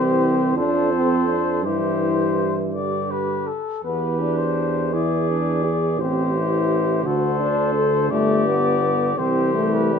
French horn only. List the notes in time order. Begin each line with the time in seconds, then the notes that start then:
Already playing: C4
0.57 D4
0.93 C4
1.28 D4
1.65 E4
3.85 B3
4.21 D4
4.93 E4
5.30 D4
5.64 G#4
5.99 C4
6.36 E4
7.05 F#4
7.39 D4
7.74 A4
8.10 A3
8.46 B3
9.17 C4
9.54 A3
9.92 G3